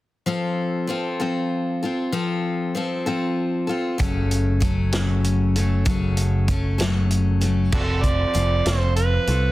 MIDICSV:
0, 0, Header, 1, 5, 480
1, 0, Start_track
1, 0, Tempo, 620476
1, 217, Time_signature, 6, 3, 24, 8
1, 7364, End_track
2, 0, Start_track
2, 0, Title_t, "Harmonica"
2, 0, Program_c, 0, 22
2, 5986, Note_on_c, 0, 62, 56
2, 5986, Note_on_c, 0, 66, 56
2, 5986, Note_on_c, 0, 69, 81
2, 6049, Note_off_c, 0, 66, 0
2, 6050, Note_off_c, 0, 62, 0
2, 6213, Note_on_c, 0, 74, 93
2, 6224, Note_off_c, 0, 69, 0
2, 6708, Note_on_c, 0, 72, 85
2, 6719, Note_off_c, 0, 74, 0
2, 6928, Note_off_c, 0, 72, 0
2, 6932, Note_on_c, 0, 71, 83
2, 7364, Note_off_c, 0, 71, 0
2, 7364, End_track
3, 0, Start_track
3, 0, Title_t, "Steel-string acoustic guitar"
3, 0, Program_c, 1, 25
3, 201, Note_on_c, 1, 53, 57
3, 207, Note_on_c, 1, 60, 60
3, 211, Note_on_c, 1, 65, 63
3, 215, Note_on_c, 1, 69, 66
3, 667, Note_off_c, 1, 53, 0
3, 676, Note_on_c, 1, 53, 54
3, 677, Note_off_c, 1, 60, 0
3, 684, Note_off_c, 1, 65, 0
3, 686, Note_on_c, 1, 60, 50
3, 694, Note_off_c, 1, 69, 0
3, 694, Note_on_c, 1, 65, 53
3, 697, Note_on_c, 1, 69, 53
3, 916, Note_off_c, 1, 69, 0
3, 920, Note_off_c, 1, 65, 0
3, 926, Note_off_c, 1, 53, 0
3, 926, Note_off_c, 1, 60, 0
3, 926, Note_on_c, 1, 69, 53
3, 929, Note_on_c, 1, 65, 46
3, 935, Note_on_c, 1, 60, 44
3, 940, Note_on_c, 1, 53, 41
3, 1409, Note_off_c, 1, 69, 0
3, 1411, Note_off_c, 1, 65, 0
3, 1413, Note_on_c, 1, 69, 43
3, 1415, Note_off_c, 1, 60, 0
3, 1417, Note_off_c, 1, 53, 0
3, 1420, Note_on_c, 1, 65, 45
3, 1432, Note_on_c, 1, 60, 38
3, 1639, Note_off_c, 1, 60, 0
3, 1639, Note_off_c, 1, 65, 0
3, 1643, Note_on_c, 1, 53, 65
3, 1646, Note_off_c, 1, 69, 0
3, 1648, Note_on_c, 1, 60, 65
3, 1648, Note_on_c, 1, 65, 62
3, 1656, Note_on_c, 1, 69, 65
3, 2115, Note_off_c, 1, 53, 0
3, 2124, Note_off_c, 1, 60, 0
3, 2125, Note_on_c, 1, 53, 50
3, 2132, Note_off_c, 1, 65, 0
3, 2133, Note_on_c, 1, 60, 51
3, 2141, Note_on_c, 1, 65, 57
3, 2142, Note_off_c, 1, 69, 0
3, 2145, Note_on_c, 1, 69, 59
3, 2359, Note_off_c, 1, 69, 0
3, 2364, Note_off_c, 1, 65, 0
3, 2365, Note_off_c, 1, 60, 0
3, 2368, Note_on_c, 1, 69, 53
3, 2370, Note_off_c, 1, 53, 0
3, 2374, Note_on_c, 1, 65, 53
3, 2375, Note_on_c, 1, 60, 50
3, 2384, Note_on_c, 1, 53, 43
3, 2837, Note_off_c, 1, 69, 0
3, 2840, Note_on_c, 1, 69, 44
3, 2847, Note_off_c, 1, 65, 0
3, 2855, Note_off_c, 1, 60, 0
3, 2856, Note_on_c, 1, 65, 45
3, 2859, Note_off_c, 1, 53, 0
3, 2866, Note_on_c, 1, 60, 38
3, 3079, Note_on_c, 1, 42, 53
3, 3080, Note_on_c, 1, 49, 57
3, 3088, Note_off_c, 1, 60, 0
3, 3088, Note_off_c, 1, 65, 0
3, 3088, Note_off_c, 1, 69, 0
3, 3088, Note_on_c, 1, 54, 61
3, 3091, Note_on_c, 1, 57, 63
3, 3091, Note_on_c, 1, 61, 68
3, 3096, Note_on_c, 1, 69, 71
3, 3552, Note_off_c, 1, 54, 0
3, 3562, Note_on_c, 1, 54, 59
3, 3567, Note_off_c, 1, 42, 0
3, 3568, Note_off_c, 1, 49, 0
3, 3568, Note_off_c, 1, 57, 0
3, 3571, Note_off_c, 1, 61, 0
3, 3571, Note_on_c, 1, 57, 50
3, 3580, Note_off_c, 1, 69, 0
3, 3580, Note_on_c, 1, 61, 51
3, 3583, Note_on_c, 1, 69, 61
3, 3802, Note_off_c, 1, 69, 0
3, 3803, Note_off_c, 1, 61, 0
3, 3804, Note_off_c, 1, 57, 0
3, 3806, Note_off_c, 1, 54, 0
3, 3811, Note_on_c, 1, 69, 54
3, 3812, Note_on_c, 1, 61, 57
3, 3814, Note_on_c, 1, 57, 50
3, 3815, Note_on_c, 1, 54, 54
3, 3820, Note_on_c, 1, 42, 48
3, 3820, Note_on_c, 1, 49, 43
3, 4294, Note_off_c, 1, 61, 0
3, 4296, Note_off_c, 1, 54, 0
3, 4298, Note_off_c, 1, 42, 0
3, 4298, Note_off_c, 1, 49, 0
3, 4299, Note_off_c, 1, 69, 0
3, 4302, Note_on_c, 1, 69, 48
3, 4309, Note_on_c, 1, 61, 42
3, 4315, Note_off_c, 1, 57, 0
3, 4317, Note_on_c, 1, 54, 39
3, 4318, Note_on_c, 1, 57, 41
3, 4526, Note_off_c, 1, 54, 0
3, 4528, Note_on_c, 1, 42, 65
3, 4529, Note_off_c, 1, 57, 0
3, 4533, Note_off_c, 1, 61, 0
3, 4533, Note_on_c, 1, 49, 59
3, 4535, Note_on_c, 1, 54, 66
3, 4536, Note_off_c, 1, 69, 0
3, 4538, Note_on_c, 1, 57, 63
3, 4543, Note_on_c, 1, 61, 66
3, 4546, Note_on_c, 1, 69, 75
3, 5009, Note_off_c, 1, 54, 0
3, 5012, Note_off_c, 1, 42, 0
3, 5015, Note_off_c, 1, 49, 0
3, 5017, Note_off_c, 1, 57, 0
3, 5018, Note_on_c, 1, 54, 47
3, 5020, Note_off_c, 1, 61, 0
3, 5021, Note_off_c, 1, 69, 0
3, 5027, Note_on_c, 1, 57, 57
3, 5030, Note_on_c, 1, 61, 61
3, 5038, Note_on_c, 1, 69, 61
3, 5237, Note_off_c, 1, 69, 0
3, 5241, Note_off_c, 1, 61, 0
3, 5247, Note_off_c, 1, 57, 0
3, 5247, Note_on_c, 1, 69, 60
3, 5248, Note_off_c, 1, 54, 0
3, 5250, Note_on_c, 1, 61, 57
3, 5256, Note_on_c, 1, 57, 50
3, 5257, Note_on_c, 1, 54, 55
3, 5263, Note_on_c, 1, 49, 50
3, 5266, Note_on_c, 1, 42, 48
3, 5722, Note_off_c, 1, 69, 0
3, 5731, Note_on_c, 1, 69, 47
3, 5734, Note_off_c, 1, 61, 0
3, 5737, Note_off_c, 1, 57, 0
3, 5738, Note_off_c, 1, 54, 0
3, 5740, Note_off_c, 1, 49, 0
3, 5742, Note_off_c, 1, 42, 0
3, 5747, Note_on_c, 1, 61, 43
3, 5750, Note_on_c, 1, 57, 42
3, 5755, Note_on_c, 1, 54, 36
3, 5974, Note_off_c, 1, 54, 0
3, 5974, Note_off_c, 1, 69, 0
3, 5977, Note_on_c, 1, 53, 53
3, 5982, Note_off_c, 1, 61, 0
3, 5983, Note_off_c, 1, 57, 0
3, 5987, Note_on_c, 1, 60, 56
3, 5988, Note_on_c, 1, 65, 60
3, 5997, Note_on_c, 1, 69, 62
3, 6440, Note_off_c, 1, 53, 0
3, 6449, Note_on_c, 1, 53, 53
3, 6450, Note_off_c, 1, 60, 0
3, 6458, Note_off_c, 1, 65, 0
3, 6460, Note_on_c, 1, 60, 50
3, 6467, Note_on_c, 1, 65, 50
3, 6473, Note_off_c, 1, 69, 0
3, 6476, Note_on_c, 1, 69, 48
3, 6694, Note_off_c, 1, 53, 0
3, 6694, Note_off_c, 1, 69, 0
3, 6699, Note_off_c, 1, 60, 0
3, 6699, Note_off_c, 1, 65, 0
3, 6703, Note_on_c, 1, 69, 52
3, 6708, Note_on_c, 1, 65, 45
3, 6712, Note_on_c, 1, 60, 45
3, 6716, Note_on_c, 1, 53, 45
3, 7178, Note_off_c, 1, 69, 0
3, 7182, Note_off_c, 1, 65, 0
3, 7182, Note_on_c, 1, 69, 48
3, 7186, Note_off_c, 1, 60, 0
3, 7188, Note_off_c, 1, 53, 0
3, 7191, Note_on_c, 1, 65, 42
3, 7203, Note_on_c, 1, 60, 35
3, 7364, Note_off_c, 1, 60, 0
3, 7364, Note_off_c, 1, 65, 0
3, 7364, Note_off_c, 1, 69, 0
3, 7364, End_track
4, 0, Start_track
4, 0, Title_t, "Picked electric bass"
4, 0, Program_c, 2, 34
4, 3095, Note_on_c, 2, 30, 68
4, 4507, Note_off_c, 2, 30, 0
4, 4535, Note_on_c, 2, 30, 65
4, 5948, Note_off_c, 2, 30, 0
4, 5977, Note_on_c, 2, 29, 83
4, 6373, Note_off_c, 2, 29, 0
4, 6463, Note_on_c, 2, 29, 74
4, 6659, Note_off_c, 2, 29, 0
4, 6699, Note_on_c, 2, 29, 83
4, 7095, Note_off_c, 2, 29, 0
4, 7177, Note_on_c, 2, 36, 72
4, 7364, Note_off_c, 2, 36, 0
4, 7364, End_track
5, 0, Start_track
5, 0, Title_t, "Drums"
5, 3094, Note_on_c, 9, 36, 85
5, 3094, Note_on_c, 9, 42, 65
5, 3171, Note_off_c, 9, 36, 0
5, 3172, Note_off_c, 9, 42, 0
5, 3334, Note_on_c, 9, 42, 47
5, 3411, Note_off_c, 9, 42, 0
5, 3571, Note_on_c, 9, 42, 48
5, 3573, Note_on_c, 9, 36, 63
5, 3648, Note_off_c, 9, 42, 0
5, 3650, Note_off_c, 9, 36, 0
5, 3809, Note_on_c, 9, 42, 68
5, 3818, Note_on_c, 9, 38, 89
5, 3887, Note_off_c, 9, 42, 0
5, 3895, Note_off_c, 9, 38, 0
5, 4056, Note_on_c, 9, 42, 45
5, 4134, Note_off_c, 9, 42, 0
5, 4298, Note_on_c, 9, 42, 49
5, 4375, Note_off_c, 9, 42, 0
5, 4530, Note_on_c, 9, 42, 70
5, 4534, Note_on_c, 9, 36, 93
5, 4608, Note_off_c, 9, 42, 0
5, 4612, Note_off_c, 9, 36, 0
5, 4772, Note_on_c, 9, 42, 56
5, 4849, Note_off_c, 9, 42, 0
5, 5012, Note_on_c, 9, 42, 50
5, 5015, Note_on_c, 9, 36, 62
5, 5089, Note_off_c, 9, 42, 0
5, 5092, Note_off_c, 9, 36, 0
5, 5257, Note_on_c, 9, 42, 72
5, 5266, Note_on_c, 9, 38, 89
5, 5335, Note_off_c, 9, 42, 0
5, 5343, Note_off_c, 9, 38, 0
5, 5497, Note_on_c, 9, 42, 51
5, 5574, Note_off_c, 9, 42, 0
5, 5735, Note_on_c, 9, 42, 50
5, 5812, Note_off_c, 9, 42, 0
5, 5974, Note_on_c, 9, 49, 81
5, 5977, Note_on_c, 9, 36, 89
5, 6052, Note_off_c, 9, 49, 0
5, 6054, Note_off_c, 9, 36, 0
5, 6215, Note_on_c, 9, 36, 62
5, 6216, Note_on_c, 9, 42, 46
5, 6292, Note_off_c, 9, 36, 0
5, 6293, Note_off_c, 9, 42, 0
5, 6455, Note_on_c, 9, 42, 49
5, 6532, Note_off_c, 9, 42, 0
5, 6696, Note_on_c, 9, 42, 68
5, 6704, Note_on_c, 9, 38, 93
5, 6773, Note_off_c, 9, 42, 0
5, 6782, Note_off_c, 9, 38, 0
5, 6934, Note_on_c, 9, 42, 44
5, 7011, Note_off_c, 9, 42, 0
5, 7174, Note_on_c, 9, 42, 46
5, 7251, Note_off_c, 9, 42, 0
5, 7364, End_track
0, 0, End_of_file